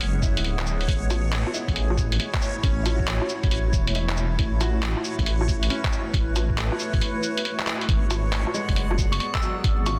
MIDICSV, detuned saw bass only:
0, 0, Header, 1, 2, 480
1, 0, Start_track
1, 0, Key_signature, 3, "minor"
1, 0, Tempo, 437956
1, 966, Time_signature, 4, 2, 24, 8
1, 10950, End_track
2, 0, Start_track
2, 0, Title_t, "Detuned saw bass"
2, 0, Program_c, 0, 39
2, 0, Note_on_c, 0, 30, 95
2, 391, Note_off_c, 0, 30, 0
2, 397, Note_on_c, 0, 26, 83
2, 953, Note_off_c, 0, 26, 0
2, 963, Note_on_c, 0, 33, 98
2, 1581, Note_off_c, 0, 33, 0
2, 1842, Note_on_c, 0, 33, 94
2, 2395, Note_off_c, 0, 33, 0
2, 2887, Note_on_c, 0, 33, 98
2, 3503, Note_off_c, 0, 33, 0
2, 3765, Note_on_c, 0, 33, 97
2, 4081, Note_off_c, 0, 33, 0
2, 4088, Note_on_c, 0, 28, 86
2, 4796, Note_off_c, 0, 28, 0
2, 4809, Note_on_c, 0, 33, 99
2, 5424, Note_off_c, 0, 33, 0
2, 5683, Note_on_c, 0, 33, 96
2, 6235, Note_off_c, 0, 33, 0
2, 6725, Note_on_c, 0, 33, 95
2, 7342, Note_off_c, 0, 33, 0
2, 7599, Note_on_c, 0, 33, 101
2, 7684, Note_off_c, 0, 33, 0
2, 8641, Note_on_c, 0, 32, 96
2, 9260, Note_off_c, 0, 32, 0
2, 9519, Note_on_c, 0, 30, 99
2, 10074, Note_off_c, 0, 30, 0
2, 10567, Note_on_c, 0, 32, 98
2, 10950, Note_off_c, 0, 32, 0
2, 10950, End_track
0, 0, End_of_file